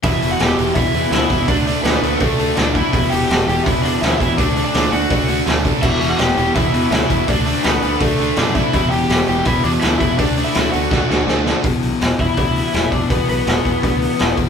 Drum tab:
CC |--------|--------|--------|--------|
HH |oooooooo|oooooooo|oooooooo|oooooooo|
SD |--o---o-|--o---o-|--o---o-|--o---o-|
BD |o---o--o|o---o--o|o---o--o|o---o--o|

CC |x-------|--------|--------|--------|
HH |-ooooooo|oooooooo|oooooooo|oooo----|
SD |--o---o-|--o---o-|--o---o-|--o-oooo|
BD |o---o--o|o---o--o|o---o--o|o---o---|

CC |--------|--------|
HH |oooooooo|oooooooo|
SD |--o---o-|--o---o-|
BD |o--oo--o|o--oo--o|